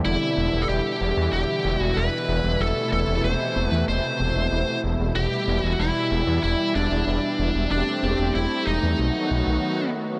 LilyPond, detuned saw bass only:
\new Staff \with { instrumentName = "Detuned saw bass" } { \clef bass \time 4/4 \key e \minor \tempo 4 = 94 e,,16 r16 e,,16 e,,16 e,,16 r16 e,,16 e,16 e,,16 r16 e,,16 e,,16 e,,16 r16 e,,16 e,,16 | e,,16 r16 e,,16 e,,16 e,,16 r16 e,,16 e,16 e,,16 r16 e,,16 e,,16 e,,16 r16 e,,16 e,,16 | e,,16 r16 e,,16 e,,16 e,,16 r16 e,,16 e,16 e,,16 r16 e,,16 e,,16 e,,16 r16 e,,16 e,,16 | e,,16 r16 e,,16 e,,16 e,,16 r16 e,,16 e,16 b,,16 r16 b,,16 b,,16 r4 | }